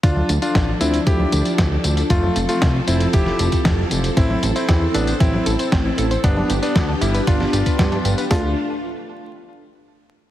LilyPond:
<<
  \new Staff \with { instrumentName = "Synth arpeggio sound" } { \time 4/4 \key d \dorian \tempo 4 = 116 r1 | r1 | c'16 e'16 a'16 c''16 c'16 e'16 a'16 c''16 c'16 e'16 a'16 c''16 c'16 e'16 a'16 c''16 | b16 d'16 g'16 b'16 b16 d'16 g'16 b'16 b16 d'16 g'16 b'16 b16 d'16 g'16 b'16 |
d'8 r2. r8 | }
  \new Staff \with { instrumentName = "Electric grand piano" } { \time 4/4 \key d \dorian <d' f'>8 r16 <d' f'>8 r16 <c' e'>16 r16 <e' g'>4.~ <e' g'>16 r16 | <a f'>8 r16 <a f'>8 r16 <c' e'>16 r16 <e' g'>4.~ <e' g'>16 r16 | <c' e'>8 r16 <c' e'>8 r16 <b d'>16 r16 <c' e'>4.~ <c' e'>16 r16 | <b d'>8 r16 <b d'>8 r16 <g e'>16 r16 <d' f'>4.~ <d' f'>16 r16 |
f'8 r2. r8 | }
  \new Staff \with { instrumentName = "String machine" } { \time 4/4 \key d \dorian << { a'1~ | a'1~ | a'1 | g'1 |
<a d' f'>8 r2. r8 | } \\ { <f d'>1 | <f c'>1 | <c' e'>1 | <b d'>1 |
r1 | } >> }
  \new Staff \with { instrumentName = "Analog synth bass" } { \clef bass \time 4/4 \key d \dorian d,8 d,8 a,,8 d,8 d,8 d,8 d,8 d,8 | f,,8 f,,8 c,8 f,,8 f,,8 f,,8 f,,8 f,,8 | a,,8 a,,8 e,8 a,,8 a,,8 a,,8 a,,8 a,,8 | g,,8 g,,8 d,8 g,,8 g,,8 g,,8 g,8 g,,8 |
d,8 r2. r8 | }
  \new DrumStaff \with { instrumentName = "Drums" } \drummode { \time 4/4 <hh bd tamb>16 cgho16 <hh tamb>16 <hh tamb>16 <hh bd sn tamb>8 <hh tamb>16 <hh tamb>16 <cgho hh bd tamb>16 cgho16 <hh tamb>16 <hh tamb>16 <hh bd sn tamb>8 <hh tamb>16 <hh tamb>16 | <hh bd tamb>16 cgho16 <hh tamb>16 <hh tamb>16 <hh bd sn tamb>8 <hh tamb>16 <hh tamb>16 <hh bd tamb>16 sn16 <hh tamb>16 <hh bd tamb>16 <hh bd sn tamb>16 cgho16 <hh tamb>16 <hh tamb>16 | <hh bd tamb>16 cgho16 <hh tamb>16 <hh tamb>16 <hh bd sn tamb>8 <hh tamb>16 <hh tamb>16 <cgho hh bd tamb>16 cgho16 <hh tamb>16 <hh tamb>16 <hh bd sn tamb>8 <hh tamb>16 <hh tamb>16 | <hh bd tamb>16 cgho16 <hh tamb>16 <hh tamb>16 <hh bd sn tamb>8 <hh tamb>16 <hh tamb>16 <hh bd tamb>16 sn16 <hh tamb>16 <hh bd tamb>16 <hh bd sn tamb>16 <cgho hh>16 <hh tamb>16 <hh tamb>16 |
<bd sn>4 r4 r4 r4 | }
>>